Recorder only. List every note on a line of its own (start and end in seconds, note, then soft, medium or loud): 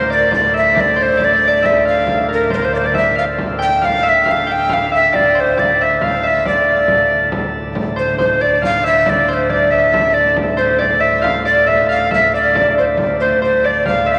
0.12 0.31 D5 medium
0.34 0.54 D5 medium
0.57 0.82 E5 medium
0.80 1.04 D5 medium
1.02 1.26 C5 medium
1.24 1.67 D5 medium
1.66 1.86 E5 medium
1.88 2.27 F5 medium
2.33 2.51 A#4 medium
2.54 2.66 A#4 medium
2.54 2.58 C5 medium
2.65 2.74 C5 medium
2.75 2.88 C5 medium
2.75 2.80 D5 medium
2.86 2.96 D5 medium
2.97 3.16 E5 medium
3.19 3.25 F5 medium
3.62 3.87 G5 loud
3.85 4.10 F5 loud
4.09 4.32 E5 medium
4.31 4.53 F5 medium
4.52 4.75 G5 medium
4.73 4.93 F5 medium
4.95 5.17 E5 medium
5.15 5.42 D5 medium
5.40 5.61 C5 medium
5.59 5.85 D5 medium
5.83 6.06 E5 medium
6.04 6.29 F5 medium
6.27 6.46 E5 medium
6.48 7.29 D5 medium
7.99 8.18 C5 medium
8.20 8.43 C5 medium
8.41 8.63 D5 medium
8.65 8.84 F5 loud
8.87 9.11 E5 loud
9.09 9.29 D5 medium
9.29 9.34 D5 medium
9.33 9.52 C5 medium
9.50 9.72 D5 medium
9.71 10.15 E5 medium
10.14 10.36 D5 medium
10.58 10.81 C5 medium
10.79 11.02 D5 medium
11.01 11.25 E5 medium
11.24 11.45 F5 medium
11.46 11.70 D5 medium
11.68 11.90 E5 medium
11.90 12.10 F5 medium
12.14 12.33 E5 medium
12.35 12.75 D5 medium
12.79 12.85 C5 medium
13.20 13.40 C5 medium
13.44 13.68 C5 medium
13.66 13.86 D5 medium
13.87 14.13 F5 medium
14.12 14.16 E5 medium
14.12 14.19 F5 medium